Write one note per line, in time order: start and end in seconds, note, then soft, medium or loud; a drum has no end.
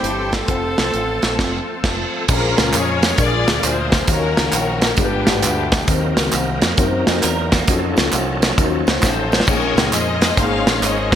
0.00 0.41 G1 medium
0.00 0.45 E3 medium
0.00 0.45 G3 medium
0.00 0.26 C4 medium
0.00 0.45 C4 medium
0.00 0.26 E4 medium
0.00 0.45 E4 medium
0.00 0.27 G4 medium
0.00 0.34 G4 medium
0.00 0.35 G4 loud
0.00 0.45 G4 medium
0.00 0.27 C5 medium
0.00 2.25 C5 medium
0.00 0.47 E5 medium
0.00 0.47 G5 medium
0.00 2.25 C6 medium
0.00 closed hi-hat medium
0.05 0.32 A4 medium
0.33 0.50 G4 medium
0.33 1.84 A4 loud
0.33 kick medium
0.33 snare loud
0.33 closed hi-hat medium
0.48 0.74 F1 medium
0.48 2.25 F3 medium
0.48 2.26 A3 medium
0.48 1.04 C4 medium
0.48 2.26 C4 medium
0.48 1.85 C4 medium
0.48 1.04 F4 medium
0.48 1.85 F4 medium
0.48 2.25 A4 medium
0.48 1.05 A4 medium
0.48 1.84 A4 medium
0.48 1.05 C5 medium
0.48 2.27 F5 medium
0.48 2.27 A5 medium
0.48 kick loud
0.48 closed hi-hat medium
0.78 0.92 C2 medium
0.78 snare loud
0.78 closed hi-hat medium
0.94 1.19 A1 medium
0.94 closed hi-hat medium
1.22 1.37 A#1 medium
1.22 snare medium
1.22 closed hi-hat medium
1.39 1.59 F1 medium
1.39 1.59 C4 medium
1.39 1.59 F4 medium
1.39 1.59 A4 medium
1.39 kick medium
1.39 snare medium
1.39 crash medium
1.84 2.04 F1 loud
1.84 2.27 C4 medium
1.84 2.27 F4 medium
1.84 2.27 A4 medium
1.84 kick loud
1.84 snare loud
1.84 crash medium
2.28 2.54 A#1 loud
2.28 3.00 A#2 medium
2.28 3.17 G#3 medium
2.28 3.17 A#3 medium
2.28 2.85 C#4 medium
2.28 3.16 C#4 medium
2.28 3.18 C#4 medium
2.28 2.85 F4 medium
2.28 3.17 F4 medium
2.28 2.74 F4 medium
2.28 2.85 G#4 medium
2.28 2.85 A#4 medium
2.28 3.18 A#4 medium
2.28 2.75 A#4 medium
2.28 2.85 C5 medium
2.28 kick loud
2.28 crash loud
2.28 tambourine loud
2.58 2.72 C#2 medium
2.58 snare loud
2.58 closed hi-hat medium
2.58 tambourine medium
2.74 3.12 F2 loud
2.74 3.17 F4 medium
2.74 3.17 G#4 medium
2.74 3.20 C#5 loud
2.74 clap loud
2.74 closed hi-hat medium
2.74 tambourine medium
3.03 snare loud
3.03 closed hi-hat medium
3.03 tambourine medium
3.18 3.44 A#1 loud
3.18 3.90 A#2 medium
3.18 4.07 G#3 medium
3.18 4.07 A#3 medium
3.18 4.07 D4 medium
3.18 3.75 D4 medium
3.18 4.07 F4 medium
3.18 3.75 F4 medium
3.18 3.63 F4 medium
3.18 3.26 G#4 medium
3.18 3.75 G#4 medium
3.18 3.63 G#4 medium
3.18 3.75 A#4 medium
3.18 3.75 D5 medium
3.18 3.65 D5 loud
3.18 kick loud
3.18 closed hi-hat medium
3.18 tambourine medium
3.24 4.07 A#4 medium
3.48 3.61 D2 medium
3.48 snare loud
3.48 closed hi-hat medium
3.48 tambourine medium
3.63 4.02 D2 medium
3.63 4.06 F4 medium
3.63 4.06 G#4 medium
3.63 4.09 C5 loud
3.63 clap loud
3.63 closed hi-hat loud
3.63 tambourine medium
3.92 kick medium
3.92 snare loud
3.92 closed hi-hat medium
3.92 tambourine medium
4.08 4.33 D#2 loud
4.08 4.80 D#3 medium
4.08 4.16 F3 medium
4.08 4.96 C#4 medium
4.08 4.95 C#4 medium
4.08 4.97 D#4 medium
4.08 4.64 D#4 medium
4.08 4.95 F#4 medium
4.08 4.65 F#4 medium
4.08 4.96 A#4 medium
4.08 4.65 A#4 medium
4.08 4.80 A#4 loud
4.08 4.65 C#5 medium
4.08 4.96 F5 medium
4.08 4.65 F5 medium
4.08 kick loud
4.08 closed hi-hat loud
4.08 tambourine loud
4.14 4.99 F#3 medium
4.37 4.51 C#2 loud
4.37 snare loud
4.37 closed hi-hat medium
4.37 tambourine medium
4.53 4.92 A#1 loud
4.53 clap loud
4.53 closed hi-hat medium
4.53 tambourine loud
4.82 4.91 A#4 loud
4.82 snare loud
4.82 closed hi-hat medium
4.82 tambourine medium
4.97 5.23 G1 loud
4.97 5.69 G2 medium
4.97 5.87 G#3 medium
4.97 5.54 G#3 medium
4.97 5.86 B3 medium
4.97 5.43 B3 medium
4.97 5.54 D4 medium
4.97 5.43 D4 medium
4.97 5.87 D4 medium
4.97 5.54 F4 medium
4.97 5.86 F4 medium
4.97 5.54 G4 medium
4.97 5.87 G4 medium
4.97 5.40 G4 medium
4.97 5.06 A4 medium
4.97 kick loud
4.97 closed hi-hat loud
4.97 tambourine medium
5.04 5.57 B4 medium
5.27 5.44 G#1 medium
5.27 snare loud
5.27 closed hi-hat medium
5.27 tambourine medium
5.42 5.81 D2 loud
5.42 5.86 B3 medium
5.42 5.86 D4 medium
5.42 5.78 G4 medium
5.42 clap loud
5.42 closed hi-hat loud
5.42 tambourine loud
5.72 kick loud
5.72 snare loud
5.72 closed hi-hat medium
5.72 tambourine medium
5.88 6.13 D#2 loud
5.88 6.59 D#3 medium
5.88 7.65 F#3 medium
5.88 7.65 A#3 medium
5.88 6.44 C4 medium
5.88 7.65 C4 medium
5.88 6.44 D#4 medium
5.88 7.65 D#4 medium
5.88 6.45 F#4 medium
5.88 6.45 A#4 medium
5.88 7.65 A#4 medium
5.88 6.45 C5 medium
5.88 kick loud
5.88 closed hi-hat loud
5.88 tambourine medium
6.17 6.31 C#2 loud
6.17 snare loud
6.17 closed hi-hat medium
6.17 tambourine medium
6.32 6.59 C2 loud
6.32 clap loud
6.32 closed hi-hat medium
6.32 tambourine medium
6.62 6.76 F2 loud
6.62 snare loud
6.62 closed hi-hat medium
6.62 tambourine medium
6.77 7.03 F#2 loud
6.77 7.34 C4 medium
6.77 7.34 D#4 medium
6.77 7.34 F#4 medium
6.77 7.34 A#4 medium
6.77 7.34 C5 loud
6.77 kick loud
6.77 closed hi-hat medium
6.77 tambourine medium
7.07 7.21 F2 loud
7.07 7.23 C4 medium
7.07 7.23 G#4 medium
7.07 snare loud
7.07 closed hi-hat medium
7.07 tambourine medium
7.23 7.62 E2 loud
7.23 7.52 A#4 medium
7.23 clap loud
7.23 closed hi-hat loud
7.23 tambourine loud
7.52 7.96 A#3 medium
7.52 7.96 F#4 medium
7.52 kick loud
7.52 snare loud
7.52 closed hi-hat medium
7.52 tambourine medium
7.67 7.93 F2 loud
7.67 9.45 F3 medium
7.67 9.45 F#3 medium
7.67 8.24 C#4 medium
7.67 9.45 C#4 medium
7.67 9.44 D#4 medium
7.67 8.24 D#4 medium
7.67 8.25 F4 medium
7.67 8.24 F#4 medium
7.67 7.76 G#4 medium
7.67 8.25 A4 loud
7.67 kick loud
7.67 closed hi-hat loud
7.67 tambourine loud
7.74 9.47 A4 loud
7.97 8.11 C#2 loud
7.97 snare loud
7.97 closed hi-hat medium
7.97 tambourine medium
8.13 8.51 C2 loud
8.13 clap loud
8.13 closed hi-hat medium
8.13 tambourine loud
8.42 snare loud
8.42 closed hi-hat medium
8.42 tambourine medium
8.57 8.83 D#2 medium
8.57 9.13 C#4 medium
8.57 9.13 D#4 medium
8.57 9.14 F4 medium
8.57 9.14 F#4 medium
8.57 8.66 A#4 medium
8.57 kick loud
8.57 closed hi-hat medium
8.57 tambourine medium
8.64 9.17 C5 loud
8.87 9.01 C#2 medium
8.87 snare loud
8.87 closed hi-hat medium
8.87 tambourine medium
9.03 9.41 A1 loud
9.03 9.45 D#4 medium
9.03 9.45 A4 medium
9.03 9.45 C5 medium
9.03 kick loud
9.03 snare medium
9.03 clap loud
9.03 tambourine loud
9.32 snare loud
9.32 tambourine medium
9.40 snare loud
9.47 9.73 A#1 loud
9.47 10.18 A#2 medium
9.47 11.15 G#3 medium
9.47 10.04 A#3 medium
9.47 11.15 A#3 medium
9.47 10.04 C#4 medium
9.47 11.15 C#4 medium
9.47 10.04 D#4 medium
9.47 11.15 D#4 medium
9.47 10.34 F4 medium
9.47 9.92 G#4 medium
9.47 10.04 G#4 medium
9.47 11.15 A#4 medium
9.47 10.04 A#4 medium
9.47 9.93 C#5 loud
9.47 kick loud
9.47 tambourine loud
9.47 crash medium
9.77 9.90 C#2 loud
9.77 snare loud
9.77 closed hi-hat medium
9.77 tambourine medium
9.92 10.31 F2 loud
9.92 10.38 G#4 medium
9.92 10.79 C5 medium
9.92 10.35 D#5 loud
9.92 clap loud
9.92 closed hi-hat medium
9.92 tambourine loud
10.22 snare loud
10.22 closed hi-hat medium
10.22 tambourine medium
10.37 10.63 G#1 medium
10.37 10.93 A#3 medium
10.37 10.94 C#4 medium
10.37 10.93 D#4 medium
10.37 10.94 G#4 medium
10.37 10.82 G#4 medium
10.37 11.15 C#5 medium
10.37 10.83 F5 loud
10.37 10.94 C6 medium
10.37 kick loud
10.37 closed hi-hat medium
10.37 tambourine medium
10.66 10.80 A#1 medium
10.66 snare loud
10.66 closed hi-hat medium
10.66 tambourine medium
10.82 11.15 G#1 loud
10.82 11.15 G#4 medium
10.82 11.15 C5 medium
10.82 11.15 D#5 loud
10.82 clap medium
10.82 closed hi-hat loud
10.82 tambourine medium
11.12 kick loud
11.12 tambourine medium